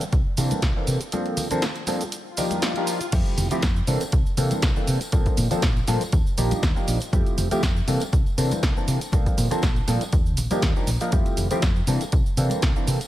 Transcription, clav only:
0.38 E3 A#3 C4 D4 A4
0.76 E3 A#3 C4 D4 A4
1.12 F3 A#3 C4 D4 A4
1.51 F3 A#3 C4 D4 A4
1.87 F3 A#3 C4 D4 A4
2.38 F3 A#3 D4 D#4 G4
2.76 F3 A#3 D4 D#4 G4
3.12 F3 A3 C4 E4 G4
3.51 F3 A3 C4 E4 G4
3.88 E3 A#3 C4 D4 A4
4.38 E3 A#3 C4 D4 A4
4.76 E3 A#3 C4 D4 A4
5.12 F3 A#3 C4 D4 A4
5.51 F3 A#3 C4 D4 A4
5.88 F3 A#3 C4 D4 A4
6.38 F3 A#3 D4 D#4 G4
6.76 F3 A#3 D4 D#4 G4
7.13 F3 A3 C4 E4 G4
7.51 F3 A3 C4 E4 G4
7.88 E3 A#3 C4 D4 A4
8.38 E3 A#3 C4 D4 A4
8.77 E3 A#3 C4 D4 A4
9.13 F3 A#3 C4 D4 A4
9.51 F3 A#3 C4 D4 A4
9.87 F3 A#3 C4 D4 A4
10.51 F3 A#3 D4 D#4 G4
10.76 F3 A#3 D4 D#4 G4
11.01 F3 A#3 D4 D#4 A#4
11.12 F3 A3 C4 G4
11.51 F3 A3 C4 E4 G4
11.88 E3 A#3 C4 D4 A4
12.38 E3 A#3 C4 D4 A4
12.76 E3 A#3 C4 D4 A4

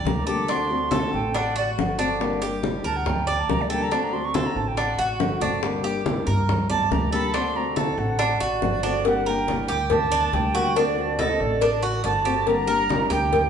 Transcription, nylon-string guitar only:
0.05 G3 A#3 D4 G4
0.27 G3 A#3 D4 G4
0.48 D3 A3 C4 F#4
0.71 A3 C4 F#4
0.92 D3 A3 C4 F#4
1.35 muted nylon-string guitar stroke
1.77 D3 A3 C4 F#4
1.98 A3 C4 F#4
2.20 D3 G3 A#3 D4 G4
2.42 G3 A#3 D4 G4
2.63 G3 A#3 D4 G4
3.06 muted nylon-string guitar stroke
3.48 G3 A#3 D4 G4
3.70 G3 A#3 D4 G4
3.91 D3 A3 C4 F#4
4.13 A3 C4 F#4
4.34 D3 A3 C4 F#4
4.78 muted nylon-string guitar stroke
5.19 D3 A3 C4 F#4
5.40 A3 C4 F#4
5.62 D3 G3 A#3 D4 G4
5.84 G3 A#3 D4 G4
6.05 G3 A#3 D4 G4
6.49 muted nylon-string guitar stroke
6.91 G3 A#3 D4 G4
7.13 G3 A#3 D4 G4
7.34 D3 A3 C4 F#4
7.56 A3 C4 F#4
7.76 D3 A3 C4 F#4
8.20 muted nylon-string guitar stroke
8.62 D3 A3 C4 F#4
8.84 A3 C4 F#4
9.05 D3 G3 A#3 D4 G4
9.26 G3 A#3 D4 G4
9.48 G3 A#3 D4 G4
9.91 muted nylon-string guitar stroke
10.34 G3 A#3 D4 G4
10.54 G3 A#3 D4 G4
10.77 D3 A3 C4 F#4
10.97 A3 C4 F#4
11.19 D3 A3 C4 F#4
11.61 muted nylon-string guitar stroke
12.03 D3 A3 C4 F#4
12.25 A3 C4 F#4
12.47 D3 G3 A#3 D4 G4
12.67 G3 A#3 D4 G4
12.88 G3 A#3 D4 G4
13.32 muted nylon-string guitar stroke

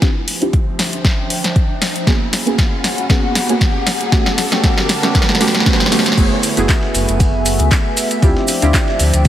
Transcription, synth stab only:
0.02 C4 D4 E4 F4 G4
0.41 C4 D4 E4 F4 G4
2.07 A#3 B3 C#4 F#4 G#4
2.46 A#3 B3 C#4 F#4 G#4
3.09 A#3 B3 C#4 F#4 G#4
3.48 A#3 B3 C#4 F#4 G#4
4.12 A3 B3 C#4 F#4 G4
4.51 A3 B3 C#4 F#4 G4
4.63 A3 B3 C#4 F#4 G4
5.02 A3 B3 C#4 F#4 G4
5.14 A3 B3 C#4 F#4 G4
5.40 A3 B3 C#4 F#4 G4
5.66 A3 B3 C#4 F#4 G4
5.91 A3 B3 C#4 F#4 G4
6.17 A3 B3 E4 F#4 G#4
6.56 A3 B3 E4 F#4 G#4
8.22 C4 D4 E4 F4 G4
8.61 C4 D4 E4 F4 G4

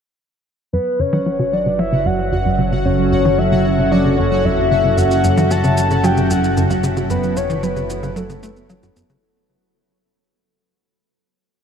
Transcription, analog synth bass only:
0.73 F#2
0.99 F#2
1.13 E3
1.26 F#3
1.39 C#3
1.66 C#3
1.79 F#3
1.92 C#3
2.05 F#2
2.32 F#2
2.45 F#2
2.58 C#3
2.72 C#3
2.85 F#2
3.12 F#2
3.25 E3
3.38 F#3
3.52 C#3
3.78 C#3
3.91 F#3
4.05 C#3
4.18 F#2
4.45 F#2
4.58 F#2
4.71 C#3
4.84 C#3
4.97 F#2
5.24 F#2
5.37 E3
5.51 F#3
5.64 C#3
5.91 C#3
6.04 F#3
6.17 C#3
6.30 F#2
6.57 F#2
6.70 F#2
6.83 C#3
6.96 C#3
7.10 F#2
7.36 F#2
7.50 E3
7.63 F#3
7.76 C#3
8.03 C#3
8.16 F#3
8.29 C#3
8.43 A3
8.70 F#3
8.83 F#2
8.96 F#2
9.10 C#3

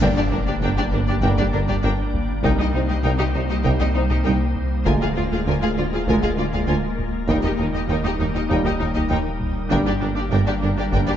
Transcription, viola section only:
0.03 D4
0.17 D4
0.32 D4
0.47 D4
0.64 D4
0.78 D4
0.94 D4
1.08 D4
1.23 D4
1.38 D4
1.53 D4
1.68 D4
1.83 D4
2.44 D#4
2.58 D#4
2.74 D#4
2.87 D#4
3.03 D#4
3.18 D#4
3.34 D#4
3.48 D#4
3.64 D#4
3.79 D#4
3.94 D#4
4.10 D#4
4.25 D#4
4.85 F4
5.01 F4
5.15 F4
5.31 F4
5.46 F4
5.61 F4
5.77 F4
5.93 F4
6.07 F4
6.22 F4
6.38 F4
6.52 F4
6.67 F4
7.30 D#4
7.45 D#4
7.59 D#4
7.74 D#4
7.89 D#4
8.04 D#4
8.20 D#4
8.34 D#4
8.49 D#4
8.65 D#4
8.79 D#4
8.95 D#4
9.10 D#4
9.70 D4
9.86 D4
10.01 D4
10.15 D4
10.30 D4
10.46 D4
10.62 D4
10.77 D4
10.91 D4
11.07 D4

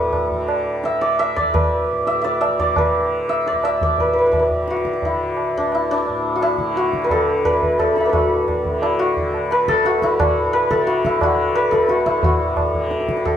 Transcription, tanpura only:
Already playing: D2 A2 D3
0.33 D3
0.86 D3
1.39 D2
1.92 A2
2.47 D3
2.98 D3
3.52 D2
3.99 A2
4.52 D3
5.03 D3
5.57 D2
6.09 A2
6.60 D3
7.12 D3
7.63 D2
8.16 A2
8.69 D3
9.18 D3
9.71 D2
10.22 A2
10.74 D3
11.26 D3
11.78 D2
12.23 A2
12.74 D3
13.27 D3

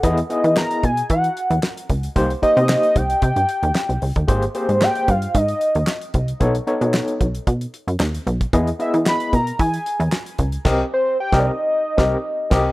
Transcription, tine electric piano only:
Already playing: A4 F#5
0.03 B3 E4 G#4 D#5
0.30 B3 E4 G#4 D#5
2.16 A#3 D#4 G4 C5
2.42 A#3 D#4 G4 C5
4.28 A#3 G4 G#4 C5
4.55 A#3 G4 G#4 C5
6.40 B3 D#4 A4 C#5
6.67 B3 D#4 A4 C#5
8.53 B3 E4 G#4 D#5
8.79 B3 E4 G#4 D#5
10.65 C4 G4 A#4 D#5
11.32 C4 G4 A#4 D#5
11.98 C4 G4 A#4 D#5
12.50 C4 G4 A#4 D#5

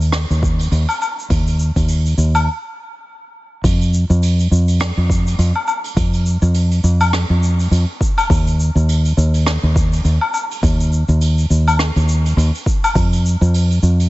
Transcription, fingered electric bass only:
Already playing: D#2
0.30 D#2
0.72 D#2
1.30 D#2
1.76 D#2
2.18 D#2
3.64 F2
4.10 F2
4.51 F2
4.97 F2
5.39 F2
5.96 F2
6.42 F2
6.84 F2
7.30 F2
7.71 F2
8.30 D#2
8.75 D#2
9.17 D#2
9.63 D#2
10.05 D#2
10.63 D#2
11.08 D#2
11.50 D#2
11.96 D#2
12.37 D#2
12.95 F2
13.41 F2
13.83 F2

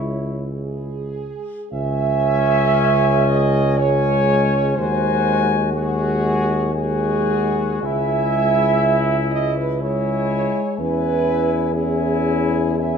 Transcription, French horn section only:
Already playing: E4
0.52 G#4
1.73 E5
3.29 D#5
3.79 C#5
4.76 C5
5.73 G#4
6.73 G#4
7.83 E5
9.31 D#5
9.57 B4
9.82 C#5
10.80 B4
11.74 G#4
12.79 E5

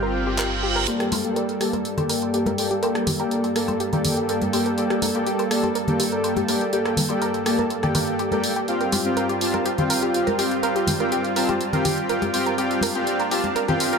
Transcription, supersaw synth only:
Already playing: C4 F4 G4 F5 G5
0.88 A#3 G4 A4 D5 G5
1.25 A#3 G4 A4 D5 G5
1.61 A#3 G4 A4 D5 A5
1.98 A#3 G4 A4 D5 G5
2.34 A#3 G4 A4 D5 G5
2.58 A#3 G4 A4 D5 G5
2.83 A#3 G4 A4 D5 G5
3.20 A#3 G4 A4 D5 G5
3.56 A#3 G4 A4 D5 A5
3.93 A#3 G4 A4 D5 G5
4.29 A#3 G4 A4 D5 G5
4.53 A#3 G4 A4 D5 G5
4.78 A#3 G4 A4 D5 G5
5.15 A#3 G4 A4 D5 G5
5.51 A#3 G4 A4 D5 A5
5.88 A#3 G4 A4 D5 G5
6.24 A#3 G4 A4 D5 G5
6.48 A#3 G4 A4 D5 G5
6.73 A#3 G4 A4 D5 G5
7.10 A#3 G4 A4 D5 G5
7.46 A#3 G4 A4 D5 A5
7.83 A#3 G4 A4 D5 G5
7.95 A#3 G4 A4 D5 G5
8.32 A#3 G4 A4 D5 G5
8.68 C4 F4 G4 F5 G5
9.05 C4 F4 G4 F5 G5
9.41 C4 F4 G4 F5 A5
9.78 C4 F4 G4 F5 G5
10.14 C4 F4 G4 F5 G5
10.39 C4 F4 G4 F5 G5
10.63 C4 F4 G4 F5 G5
11.00 C4 F4 G4 F5 G5
11.36 C4 F4 G4 F5 A5
11.73 C4 F4 G4 F5 G5
12.09 C4 F4 G4 F5 G5
12.34 C4 F4 G4 F5 G5
12.58 C4 F4 G4 F5 G5
12.95 C4 F4 G4 F5 G5
13.31 C4 F4 G4 F5 A5
13.68 C4 F4 G4 F5 G5

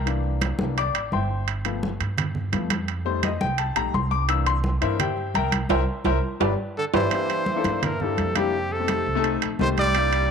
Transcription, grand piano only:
0.06 E3 A#3 D4
0.59 E3 A#3 D4
0.78 D5 D6
1.13 C5 E5 G5 C6
1.65 F3 A3 B3
2.53 F3 A3 B3
3.05 G3 A3 D#4 C5
3.24 D#5
3.41 G5
3.58 A5
3.76 G3 A3 D#4 A#5
3.94 C6
4.11 D6
4.29 E3 A#3 D4 E6
4.47 C6
4.81 E3 A#3 D4 E4 A#4 C5 E5
5.00 G4 C5 E5 G5
5.35 A#4 E5 G5 A#5
5.70 A#4 C5 E5
6.06 A#4 C5 E5
6.40 G4 B4 D5
6.94 G4 B4 D5
7.11 A#3 D4 E4 G4
7.55 A#3 D4 E4 A4
8.01 A#3 D4 E4 G4
8.35 A#3 D4 E4 G4
8.80 A3 C4 D#4 G4
9.15 A3 C4 D#4 A4
9.59 A3 C4 D#4 G4
9.94 A#3 D4 E4 G4

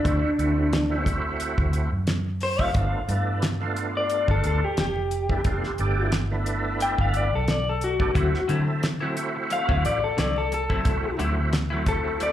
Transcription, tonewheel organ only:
0.04 A3 C4 E4 F#4
0.38 A3 C4 E4 F#4
0.90 A3 C4 E4 F#4
2.59 A3 C4 E4 F#4
2.75 A3 B3 D4 F4
3.08 E3 A3 B3 D4
3.60 A3 B3 D4 F4
5.29 A3 B3 D4 E4
5.46 A3 B3 D4 F4
5.79 A3 B3 D4 G4
6.31 A3 B3 D4 E4
7.99 A3 B3 D4 G4
8.14 A3 C4 E4 F#4
8.47 A3 C4 E4 A4
9.00 A3 C4 E4 F#4
10.69 A3 C4 E4 A4
10.84 A3 C4 E4 F#4
11.17 A3 C4 E4 F#4
11.70 A3 C4 E4 F#4

